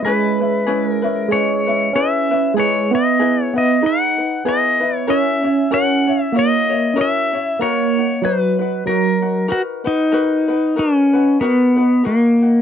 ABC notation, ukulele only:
X:1
M:4/4
L:1/8
Q:"Swing" 1/4=95
K:B
V:1 name="Ukulele"
[CEGB] [CEB] [CEGB] [CEB] [CEGB] [CEB] [CEGB] [CEB] | [DEGB] [DEB] [DEGB] [DEB] [DGB] [DB] [DEGB] [DEB] | [EFAc] [EFc] [EFAc] [EFc] [EFAc] [EFc] [EFAc] [EFc] | [DFA] [DF] [DFB] [DFB] [DFA] [DF] [DFAB] [DFB] |
[DFAB] [DFB] [DFAB] [DFB] [DFAB] [DFB] [DFA] [DF] |]